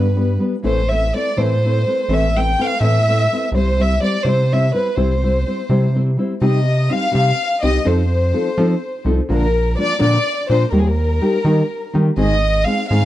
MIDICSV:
0, 0, Header, 1, 4, 480
1, 0, Start_track
1, 0, Key_signature, 0, "major"
1, 0, Tempo, 481928
1, 635, Time_signature, 6, 3, 24, 8
1, 6399, Key_signature, -3, "minor"
1, 12998, End_track
2, 0, Start_track
2, 0, Title_t, "Violin section"
2, 0, Program_c, 0, 48
2, 0, Note_on_c, 0, 71, 63
2, 361, Note_off_c, 0, 71, 0
2, 651, Note_on_c, 0, 72, 65
2, 890, Note_off_c, 0, 72, 0
2, 920, Note_on_c, 0, 76, 71
2, 1142, Note_off_c, 0, 76, 0
2, 1156, Note_on_c, 0, 74, 76
2, 1360, Note_off_c, 0, 74, 0
2, 1383, Note_on_c, 0, 72, 74
2, 2092, Note_off_c, 0, 72, 0
2, 2114, Note_on_c, 0, 76, 75
2, 2357, Note_off_c, 0, 76, 0
2, 2378, Note_on_c, 0, 79, 77
2, 2589, Note_off_c, 0, 79, 0
2, 2613, Note_on_c, 0, 77, 89
2, 2814, Note_on_c, 0, 76, 90
2, 2821, Note_off_c, 0, 77, 0
2, 3484, Note_off_c, 0, 76, 0
2, 3543, Note_on_c, 0, 72, 70
2, 3771, Note_off_c, 0, 72, 0
2, 3793, Note_on_c, 0, 76, 79
2, 4012, Note_off_c, 0, 76, 0
2, 4015, Note_on_c, 0, 74, 76
2, 4222, Note_off_c, 0, 74, 0
2, 4248, Note_on_c, 0, 72, 71
2, 4497, Note_off_c, 0, 72, 0
2, 4513, Note_on_c, 0, 76, 74
2, 4727, Note_on_c, 0, 71, 69
2, 4730, Note_off_c, 0, 76, 0
2, 4936, Note_off_c, 0, 71, 0
2, 4949, Note_on_c, 0, 72, 64
2, 5935, Note_off_c, 0, 72, 0
2, 6402, Note_on_c, 0, 75, 74
2, 6860, Note_off_c, 0, 75, 0
2, 6888, Note_on_c, 0, 77, 94
2, 7106, Note_off_c, 0, 77, 0
2, 7118, Note_on_c, 0, 77, 92
2, 7574, Note_off_c, 0, 77, 0
2, 7600, Note_on_c, 0, 75, 85
2, 7817, Note_off_c, 0, 75, 0
2, 7842, Note_on_c, 0, 72, 67
2, 9035, Note_off_c, 0, 72, 0
2, 9294, Note_on_c, 0, 70, 73
2, 9728, Note_off_c, 0, 70, 0
2, 9746, Note_on_c, 0, 74, 105
2, 9957, Note_off_c, 0, 74, 0
2, 9971, Note_on_c, 0, 74, 97
2, 10424, Note_off_c, 0, 74, 0
2, 10452, Note_on_c, 0, 72, 84
2, 10659, Note_on_c, 0, 70, 55
2, 10669, Note_off_c, 0, 72, 0
2, 10743, Note_off_c, 0, 70, 0
2, 10749, Note_on_c, 0, 68, 58
2, 10832, Note_off_c, 0, 68, 0
2, 10835, Note_on_c, 0, 70, 74
2, 11906, Note_off_c, 0, 70, 0
2, 12142, Note_on_c, 0, 75, 79
2, 12601, Note_off_c, 0, 75, 0
2, 12611, Note_on_c, 0, 77, 86
2, 12819, Note_off_c, 0, 77, 0
2, 12831, Note_on_c, 0, 77, 84
2, 12998, Note_off_c, 0, 77, 0
2, 12998, End_track
3, 0, Start_track
3, 0, Title_t, "Nylon-string guitar"
3, 0, Program_c, 1, 24
3, 153, Note_on_c, 1, 55, 58
3, 162, Note_on_c, 1, 62, 61
3, 165, Note_on_c, 1, 59, 61
3, 170, Note_on_c, 1, 71, 64
3, 300, Note_off_c, 1, 55, 0
3, 305, Note_off_c, 1, 62, 0
3, 306, Note_off_c, 1, 59, 0
3, 309, Note_off_c, 1, 71, 0
3, 385, Note_on_c, 1, 55, 54
3, 396, Note_on_c, 1, 59, 55
3, 403, Note_on_c, 1, 62, 51
3, 406, Note_on_c, 1, 71, 64
3, 534, Note_off_c, 1, 55, 0
3, 539, Note_off_c, 1, 59, 0
3, 542, Note_off_c, 1, 62, 0
3, 544, Note_off_c, 1, 71, 0
3, 623, Note_on_c, 1, 45, 66
3, 628, Note_on_c, 1, 52, 62
3, 635, Note_on_c, 1, 60, 62
3, 638, Note_on_c, 1, 57, 67
3, 639, Note_on_c, 1, 71, 63
3, 640, Note_on_c, 1, 64, 65
3, 788, Note_off_c, 1, 45, 0
3, 790, Note_off_c, 1, 52, 0
3, 794, Note_off_c, 1, 60, 0
3, 796, Note_off_c, 1, 57, 0
3, 796, Note_off_c, 1, 71, 0
3, 797, Note_off_c, 1, 64, 0
3, 901, Note_on_c, 1, 57, 42
3, 901, Note_on_c, 1, 60, 46
3, 904, Note_on_c, 1, 64, 51
3, 917, Note_on_c, 1, 71, 53
3, 1040, Note_off_c, 1, 57, 0
3, 1040, Note_off_c, 1, 60, 0
3, 1042, Note_off_c, 1, 64, 0
3, 1048, Note_off_c, 1, 71, 0
3, 1131, Note_on_c, 1, 57, 43
3, 1141, Note_on_c, 1, 60, 48
3, 1147, Note_on_c, 1, 64, 49
3, 1148, Note_on_c, 1, 71, 57
3, 1271, Note_off_c, 1, 57, 0
3, 1276, Note_off_c, 1, 60, 0
3, 1278, Note_off_c, 1, 64, 0
3, 1279, Note_off_c, 1, 71, 0
3, 1360, Note_on_c, 1, 45, 55
3, 1360, Note_on_c, 1, 52, 58
3, 1367, Note_on_c, 1, 64, 67
3, 1368, Note_on_c, 1, 57, 62
3, 1368, Note_on_c, 1, 71, 64
3, 1370, Note_on_c, 1, 60, 65
3, 1518, Note_off_c, 1, 45, 0
3, 1518, Note_off_c, 1, 52, 0
3, 1522, Note_off_c, 1, 57, 0
3, 1522, Note_off_c, 1, 64, 0
3, 1522, Note_off_c, 1, 71, 0
3, 1523, Note_off_c, 1, 60, 0
3, 1627, Note_on_c, 1, 57, 48
3, 1638, Note_on_c, 1, 60, 52
3, 1645, Note_on_c, 1, 64, 51
3, 1652, Note_on_c, 1, 71, 62
3, 1763, Note_off_c, 1, 57, 0
3, 1769, Note_off_c, 1, 60, 0
3, 1772, Note_off_c, 1, 64, 0
3, 1776, Note_off_c, 1, 71, 0
3, 1854, Note_on_c, 1, 57, 44
3, 1862, Note_on_c, 1, 64, 49
3, 1869, Note_on_c, 1, 60, 50
3, 1875, Note_on_c, 1, 71, 49
3, 1991, Note_off_c, 1, 57, 0
3, 1995, Note_off_c, 1, 64, 0
3, 1999, Note_off_c, 1, 60, 0
3, 2002, Note_off_c, 1, 71, 0
3, 2083, Note_on_c, 1, 45, 54
3, 2088, Note_on_c, 1, 52, 64
3, 2089, Note_on_c, 1, 64, 71
3, 2091, Note_on_c, 1, 57, 67
3, 2093, Note_on_c, 1, 71, 70
3, 2095, Note_on_c, 1, 60, 72
3, 2238, Note_off_c, 1, 45, 0
3, 2241, Note_off_c, 1, 52, 0
3, 2241, Note_off_c, 1, 64, 0
3, 2242, Note_off_c, 1, 57, 0
3, 2243, Note_off_c, 1, 71, 0
3, 2244, Note_off_c, 1, 60, 0
3, 2349, Note_on_c, 1, 57, 45
3, 2358, Note_on_c, 1, 64, 49
3, 2359, Note_on_c, 1, 60, 44
3, 2364, Note_on_c, 1, 71, 50
3, 2482, Note_off_c, 1, 57, 0
3, 2487, Note_off_c, 1, 60, 0
3, 2487, Note_off_c, 1, 64, 0
3, 2490, Note_off_c, 1, 71, 0
3, 2572, Note_on_c, 1, 57, 52
3, 2575, Note_on_c, 1, 60, 47
3, 2582, Note_on_c, 1, 64, 48
3, 2583, Note_on_c, 1, 71, 47
3, 2709, Note_off_c, 1, 57, 0
3, 2710, Note_off_c, 1, 60, 0
3, 2714, Note_off_c, 1, 64, 0
3, 2714, Note_off_c, 1, 71, 0
3, 2804, Note_on_c, 1, 45, 64
3, 2804, Note_on_c, 1, 52, 65
3, 2807, Note_on_c, 1, 60, 58
3, 2811, Note_on_c, 1, 64, 64
3, 2814, Note_on_c, 1, 57, 54
3, 2815, Note_on_c, 1, 71, 69
3, 2957, Note_off_c, 1, 45, 0
3, 2957, Note_off_c, 1, 52, 0
3, 2959, Note_off_c, 1, 60, 0
3, 2961, Note_off_c, 1, 64, 0
3, 2962, Note_off_c, 1, 57, 0
3, 2963, Note_off_c, 1, 71, 0
3, 3062, Note_on_c, 1, 60, 60
3, 3064, Note_on_c, 1, 57, 45
3, 3075, Note_on_c, 1, 64, 57
3, 3080, Note_on_c, 1, 71, 58
3, 3198, Note_off_c, 1, 60, 0
3, 3199, Note_off_c, 1, 57, 0
3, 3204, Note_off_c, 1, 64, 0
3, 3207, Note_off_c, 1, 71, 0
3, 3306, Note_on_c, 1, 57, 47
3, 3311, Note_on_c, 1, 60, 51
3, 3319, Note_on_c, 1, 64, 55
3, 3321, Note_on_c, 1, 71, 55
3, 3434, Note_off_c, 1, 57, 0
3, 3437, Note_off_c, 1, 60, 0
3, 3441, Note_off_c, 1, 64, 0
3, 3442, Note_off_c, 1, 71, 0
3, 3523, Note_on_c, 1, 48, 58
3, 3528, Note_on_c, 1, 60, 66
3, 3529, Note_on_c, 1, 55, 75
3, 3530, Note_on_c, 1, 64, 67
3, 3531, Note_on_c, 1, 72, 76
3, 3675, Note_off_c, 1, 48, 0
3, 3677, Note_off_c, 1, 60, 0
3, 3678, Note_off_c, 1, 55, 0
3, 3678, Note_off_c, 1, 64, 0
3, 3679, Note_off_c, 1, 72, 0
3, 3772, Note_on_c, 1, 55, 47
3, 3774, Note_on_c, 1, 60, 50
3, 3780, Note_on_c, 1, 64, 43
3, 3788, Note_on_c, 1, 72, 47
3, 3910, Note_off_c, 1, 55, 0
3, 3911, Note_off_c, 1, 60, 0
3, 3914, Note_off_c, 1, 64, 0
3, 3918, Note_off_c, 1, 72, 0
3, 3991, Note_on_c, 1, 55, 50
3, 3996, Note_on_c, 1, 60, 51
3, 3996, Note_on_c, 1, 64, 54
3, 4009, Note_on_c, 1, 72, 46
3, 4134, Note_off_c, 1, 55, 0
3, 4136, Note_off_c, 1, 60, 0
3, 4136, Note_off_c, 1, 64, 0
3, 4143, Note_off_c, 1, 72, 0
3, 4233, Note_on_c, 1, 48, 57
3, 4234, Note_on_c, 1, 55, 60
3, 4241, Note_on_c, 1, 64, 60
3, 4242, Note_on_c, 1, 60, 65
3, 4245, Note_on_c, 1, 72, 69
3, 4387, Note_off_c, 1, 48, 0
3, 4388, Note_off_c, 1, 55, 0
3, 4391, Note_off_c, 1, 64, 0
3, 4392, Note_off_c, 1, 60, 0
3, 4393, Note_off_c, 1, 72, 0
3, 4503, Note_on_c, 1, 55, 57
3, 4504, Note_on_c, 1, 60, 53
3, 4511, Note_on_c, 1, 64, 54
3, 4514, Note_on_c, 1, 72, 58
3, 4633, Note_off_c, 1, 55, 0
3, 4634, Note_off_c, 1, 60, 0
3, 4637, Note_off_c, 1, 64, 0
3, 4639, Note_off_c, 1, 72, 0
3, 4714, Note_on_c, 1, 55, 49
3, 4724, Note_on_c, 1, 64, 51
3, 4725, Note_on_c, 1, 60, 47
3, 4736, Note_on_c, 1, 72, 53
3, 4854, Note_off_c, 1, 55, 0
3, 4859, Note_off_c, 1, 60, 0
3, 4859, Note_off_c, 1, 64, 0
3, 4865, Note_off_c, 1, 72, 0
3, 4947, Note_on_c, 1, 48, 66
3, 4949, Note_on_c, 1, 55, 69
3, 4949, Note_on_c, 1, 60, 68
3, 4951, Note_on_c, 1, 64, 68
3, 4957, Note_on_c, 1, 72, 69
3, 5104, Note_off_c, 1, 48, 0
3, 5105, Note_off_c, 1, 55, 0
3, 5105, Note_off_c, 1, 60, 0
3, 5105, Note_off_c, 1, 64, 0
3, 5108, Note_off_c, 1, 72, 0
3, 5208, Note_on_c, 1, 55, 50
3, 5216, Note_on_c, 1, 60, 49
3, 5222, Note_on_c, 1, 64, 45
3, 5223, Note_on_c, 1, 72, 57
3, 5347, Note_off_c, 1, 55, 0
3, 5350, Note_off_c, 1, 60, 0
3, 5353, Note_off_c, 1, 64, 0
3, 5354, Note_off_c, 1, 72, 0
3, 5443, Note_on_c, 1, 55, 47
3, 5446, Note_on_c, 1, 60, 47
3, 5449, Note_on_c, 1, 64, 52
3, 5459, Note_on_c, 1, 72, 49
3, 5580, Note_off_c, 1, 55, 0
3, 5582, Note_off_c, 1, 60, 0
3, 5583, Note_off_c, 1, 64, 0
3, 5588, Note_off_c, 1, 72, 0
3, 5671, Note_on_c, 1, 48, 68
3, 5679, Note_on_c, 1, 55, 67
3, 5681, Note_on_c, 1, 60, 75
3, 5684, Note_on_c, 1, 72, 79
3, 5687, Note_on_c, 1, 64, 66
3, 5829, Note_off_c, 1, 48, 0
3, 5833, Note_off_c, 1, 55, 0
3, 5834, Note_off_c, 1, 60, 0
3, 5836, Note_off_c, 1, 72, 0
3, 5837, Note_off_c, 1, 64, 0
3, 5922, Note_on_c, 1, 55, 60
3, 5927, Note_on_c, 1, 60, 55
3, 5939, Note_on_c, 1, 64, 66
3, 5939, Note_on_c, 1, 72, 76
3, 6068, Note_off_c, 1, 55, 0
3, 6070, Note_off_c, 1, 60, 0
3, 6076, Note_off_c, 1, 64, 0
3, 6076, Note_off_c, 1, 72, 0
3, 6145, Note_on_c, 1, 55, 53
3, 6157, Note_on_c, 1, 60, 49
3, 6163, Note_on_c, 1, 64, 64
3, 6169, Note_on_c, 1, 72, 57
3, 6296, Note_off_c, 1, 55, 0
3, 6301, Note_off_c, 1, 60, 0
3, 6304, Note_off_c, 1, 64, 0
3, 6307, Note_off_c, 1, 72, 0
3, 6389, Note_on_c, 1, 48, 75
3, 6392, Note_on_c, 1, 55, 65
3, 6394, Note_on_c, 1, 60, 75
3, 6394, Note_on_c, 1, 63, 68
3, 6397, Note_on_c, 1, 67, 75
3, 6552, Note_off_c, 1, 48, 0
3, 6553, Note_off_c, 1, 55, 0
3, 6554, Note_off_c, 1, 60, 0
3, 6554, Note_off_c, 1, 63, 0
3, 6556, Note_off_c, 1, 67, 0
3, 6865, Note_on_c, 1, 55, 55
3, 6870, Note_on_c, 1, 60, 55
3, 6875, Note_on_c, 1, 63, 55
3, 6885, Note_on_c, 1, 67, 58
3, 7017, Note_off_c, 1, 55, 0
3, 7019, Note_off_c, 1, 60, 0
3, 7022, Note_off_c, 1, 63, 0
3, 7027, Note_off_c, 1, 67, 0
3, 7085, Note_on_c, 1, 48, 75
3, 7086, Note_on_c, 1, 55, 62
3, 7089, Note_on_c, 1, 63, 67
3, 7092, Note_on_c, 1, 60, 64
3, 7101, Note_on_c, 1, 67, 67
3, 7260, Note_off_c, 1, 48, 0
3, 7260, Note_off_c, 1, 55, 0
3, 7262, Note_off_c, 1, 63, 0
3, 7263, Note_off_c, 1, 60, 0
3, 7268, Note_off_c, 1, 67, 0
3, 7594, Note_on_c, 1, 60, 55
3, 7595, Note_on_c, 1, 55, 57
3, 7597, Note_on_c, 1, 63, 60
3, 7610, Note_on_c, 1, 67, 60
3, 7739, Note_off_c, 1, 60, 0
3, 7740, Note_off_c, 1, 55, 0
3, 7741, Note_off_c, 1, 63, 0
3, 7747, Note_off_c, 1, 67, 0
3, 7809, Note_on_c, 1, 53, 63
3, 7814, Note_on_c, 1, 60, 73
3, 7819, Note_on_c, 1, 63, 69
3, 7819, Note_on_c, 1, 69, 79
3, 7978, Note_off_c, 1, 53, 0
3, 7981, Note_off_c, 1, 60, 0
3, 7983, Note_off_c, 1, 63, 0
3, 7983, Note_off_c, 1, 69, 0
3, 8296, Note_on_c, 1, 60, 57
3, 8297, Note_on_c, 1, 53, 61
3, 8304, Note_on_c, 1, 63, 54
3, 8311, Note_on_c, 1, 69, 59
3, 8446, Note_off_c, 1, 53, 0
3, 8446, Note_off_c, 1, 60, 0
3, 8450, Note_off_c, 1, 63, 0
3, 8453, Note_off_c, 1, 69, 0
3, 8543, Note_on_c, 1, 53, 69
3, 8551, Note_on_c, 1, 60, 74
3, 8551, Note_on_c, 1, 69, 81
3, 8553, Note_on_c, 1, 63, 85
3, 8701, Note_off_c, 1, 53, 0
3, 8705, Note_off_c, 1, 60, 0
3, 8705, Note_off_c, 1, 63, 0
3, 8705, Note_off_c, 1, 69, 0
3, 9009, Note_on_c, 1, 53, 56
3, 9016, Note_on_c, 1, 60, 63
3, 9025, Note_on_c, 1, 63, 67
3, 9025, Note_on_c, 1, 69, 68
3, 9157, Note_off_c, 1, 53, 0
3, 9161, Note_off_c, 1, 60, 0
3, 9165, Note_off_c, 1, 63, 0
3, 9165, Note_off_c, 1, 69, 0
3, 9250, Note_on_c, 1, 46, 70
3, 9250, Note_on_c, 1, 50, 73
3, 9252, Note_on_c, 1, 58, 71
3, 9256, Note_on_c, 1, 53, 74
3, 9259, Note_on_c, 1, 70, 84
3, 9260, Note_on_c, 1, 62, 76
3, 9408, Note_off_c, 1, 46, 0
3, 9408, Note_off_c, 1, 50, 0
3, 9410, Note_off_c, 1, 58, 0
3, 9411, Note_off_c, 1, 53, 0
3, 9413, Note_off_c, 1, 62, 0
3, 9413, Note_off_c, 1, 70, 0
3, 9738, Note_on_c, 1, 53, 51
3, 9741, Note_on_c, 1, 58, 60
3, 9746, Note_on_c, 1, 62, 62
3, 9756, Note_on_c, 1, 70, 64
3, 9877, Note_off_c, 1, 53, 0
3, 9879, Note_off_c, 1, 58, 0
3, 9881, Note_off_c, 1, 62, 0
3, 9886, Note_off_c, 1, 70, 0
3, 9946, Note_on_c, 1, 53, 80
3, 9948, Note_on_c, 1, 46, 68
3, 9949, Note_on_c, 1, 50, 66
3, 9953, Note_on_c, 1, 58, 75
3, 9954, Note_on_c, 1, 70, 77
3, 9955, Note_on_c, 1, 62, 83
3, 10113, Note_off_c, 1, 53, 0
3, 10114, Note_off_c, 1, 46, 0
3, 10115, Note_off_c, 1, 50, 0
3, 10117, Note_off_c, 1, 58, 0
3, 10118, Note_off_c, 1, 62, 0
3, 10118, Note_off_c, 1, 70, 0
3, 10458, Note_on_c, 1, 53, 57
3, 10462, Note_on_c, 1, 62, 58
3, 10466, Note_on_c, 1, 58, 51
3, 10473, Note_on_c, 1, 70, 68
3, 10596, Note_off_c, 1, 53, 0
3, 10598, Note_off_c, 1, 62, 0
3, 10600, Note_off_c, 1, 58, 0
3, 10603, Note_off_c, 1, 70, 0
3, 10675, Note_on_c, 1, 51, 69
3, 10678, Note_on_c, 1, 55, 81
3, 10682, Note_on_c, 1, 58, 71
3, 10686, Note_on_c, 1, 67, 71
3, 10687, Note_on_c, 1, 63, 72
3, 10838, Note_off_c, 1, 51, 0
3, 10839, Note_off_c, 1, 55, 0
3, 10841, Note_off_c, 1, 58, 0
3, 10843, Note_off_c, 1, 63, 0
3, 10843, Note_off_c, 1, 67, 0
3, 11160, Note_on_c, 1, 55, 50
3, 11164, Note_on_c, 1, 58, 56
3, 11171, Note_on_c, 1, 63, 52
3, 11177, Note_on_c, 1, 67, 54
3, 11309, Note_off_c, 1, 55, 0
3, 11311, Note_off_c, 1, 58, 0
3, 11315, Note_off_c, 1, 63, 0
3, 11318, Note_off_c, 1, 67, 0
3, 11398, Note_on_c, 1, 51, 68
3, 11400, Note_on_c, 1, 58, 70
3, 11402, Note_on_c, 1, 55, 63
3, 11407, Note_on_c, 1, 63, 66
3, 11416, Note_on_c, 1, 67, 59
3, 11563, Note_off_c, 1, 51, 0
3, 11564, Note_off_c, 1, 58, 0
3, 11565, Note_off_c, 1, 55, 0
3, 11567, Note_off_c, 1, 63, 0
3, 11572, Note_off_c, 1, 67, 0
3, 11887, Note_on_c, 1, 55, 62
3, 11887, Note_on_c, 1, 58, 60
3, 11893, Note_on_c, 1, 63, 62
3, 11896, Note_on_c, 1, 67, 64
3, 12037, Note_off_c, 1, 55, 0
3, 12037, Note_off_c, 1, 58, 0
3, 12040, Note_off_c, 1, 63, 0
3, 12042, Note_off_c, 1, 67, 0
3, 12114, Note_on_c, 1, 44, 63
3, 12120, Note_on_c, 1, 51, 66
3, 12122, Note_on_c, 1, 60, 61
3, 12126, Note_on_c, 1, 63, 75
3, 12131, Note_on_c, 1, 56, 65
3, 12134, Note_on_c, 1, 68, 66
3, 12285, Note_off_c, 1, 44, 0
3, 12288, Note_off_c, 1, 51, 0
3, 12289, Note_off_c, 1, 60, 0
3, 12291, Note_off_c, 1, 63, 0
3, 12294, Note_off_c, 1, 56, 0
3, 12295, Note_off_c, 1, 68, 0
3, 12606, Note_on_c, 1, 56, 50
3, 12611, Note_on_c, 1, 60, 55
3, 12623, Note_on_c, 1, 68, 56
3, 12624, Note_on_c, 1, 63, 59
3, 12759, Note_off_c, 1, 56, 0
3, 12761, Note_off_c, 1, 60, 0
3, 12767, Note_off_c, 1, 68, 0
3, 12768, Note_off_c, 1, 63, 0
3, 12852, Note_on_c, 1, 44, 62
3, 12855, Note_on_c, 1, 51, 70
3, 12856, Note_on_c, 1, 56, 67
3, 12859, Note_on_c, 1, 60, 68
3, 12860, Note_on_c, 1, 68, 84
3, 12863, Note_on_c, 1, 63, 73
3, 12998, Note_off_c, 1, 44, 0
3, 12998, Note_off_c, 1, 51, 0
3, 12998, Note_off_c, 1, 56, 0
3, 12998, Note_off_c, 1, 60, 0
3, 12998, Note_off_c, 1, 63, 0
3, 12998, Note_off_c, 1, 68, 0
3, 12998, End_track
4, 0, Start_track
4, 0, Title_t, "Analog synth bass"
4, 0, Program_c, 2, 38
4, 0, Note_on_c, 2, 43, 88
4, 377, Note_off_c, 2, 43, 0
4, 645, Note_on_c, 2, 33, 91
4, 1115, Note_off_c, 2, 33, 0
4, 1374, Note_on_c, 2, 45, 91
4, 1838, Note_off_c, 2, 45, 0
4, 2077, Note_on_c, 2, 33, 90
4, 2545, Note_off_c, 2, 33, 0
4, 2795, Note_on_c, 2, 45, 101
4, 3262, Note_off_c, 2, 45, 0
4, 3504, Note_on_c, 2, 36, 92
4, 3973, Note_off_c, 2, 36, 0
4, 4230, Note_on_c, 2, 48, 92
4, 4696, Note_off_c, 2, 48, 0
4, 4954, Note_on_c, 2, 36, 94
4, 5422, Note_off_c, 2, 36, 0
4, 5672, Note_on_c, 2, 48, 88
4, 6145, Note_off_c, 2, 48, 0
4, 6389, Note_on_c, 2, 48, 92
4, 6863, Note_off_c, 2, 48, 0
4, 7120, Note_on_c, 2, 48, 100
4, 7290, Note_off_c, 2, 48, 0
4, 7604, Note_on_c, 2, 36, 94
4, 7755, Note_off_c, 2, 36, 0
4, 7831, Note_on_c, 2, 41, 92
4, 8296, Note_off_c, 2, 41, 0
4, 8542, Note_on_c, 2, 53, 97
4, 8712, Note_off_c, 2, 53, 0
4, 9015, Note_on_c, 2, 36, 98
4, 9168, Note_off_c, 2, 36, 0
4, 9261, Note_on_c, 2, 34, 92
4, 9723, Note_off_c, 2, 34, 0
4, 9972, Note_on_c, 2, 46, 100
4, 10140, Note_off_c, 2, 46, 0
4, 10454, Note_on_c, 2, 46, 94
4, 10605, Note_off_c, 2, 46, 0
4, 10679, Note_on_c, 2, 39, 98
4, 11153, Note_off_c, 2, 39, 0
4, 11401, Note_on_c, 2, 51, 96
4, 11575, Note_off_c, 2, 51, 0
4, 11901, Note_on_c, 2, 51, 91
4, 12054, Note_off_c, 2, 51, 0
4, 12121, Note_on_c, 2, 32, 97
4, 12598, Note_off_c, 2, 32, 0
4, 12854, Note_on_c, 2, 44, 93
4, 12998, Note_off_c, 2, 44, 0
4, 12998, End_track
0, 0, End_of_file